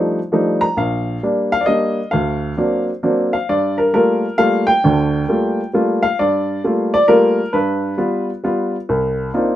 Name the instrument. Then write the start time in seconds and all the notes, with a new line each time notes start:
upright piano
Already playing: F3 G3 A3 D4 D#4
0.32 F3 G3 A3 D4 D#4
0.61 A#5
0.77 A#1 F5
1.23 G3 A#3 D4
1.52 F5
1.61 D5
1.66 G3 A#3 D4 D#5
2.11 D2 F5
2.57 F#3 A#3 C4 D4
3.03 F#3 A#3 C4 D4
3.33 F5
3.49 G2 D5
3.78 A#4
3.93 G3 A3 A#3 F4 A#4
4.38 G3 A3 A#3 F4 F5
4.67 G5
4.84 D2 D3
5.29 G3 A3 A#3 F4
5.73 G3 A3 A#3 F4
6.03 F5
6.19 G2 D5
6.64 G3 A3 A#3 F4
6.94 D5
7.08 G3 A3 A#3 F4 A#4
7.53 G2 B4
7.98 G3 B3 F4
8.44 G3 B3 F4
8.89 C2
9.34 A#3 C4 D4 D#4 F4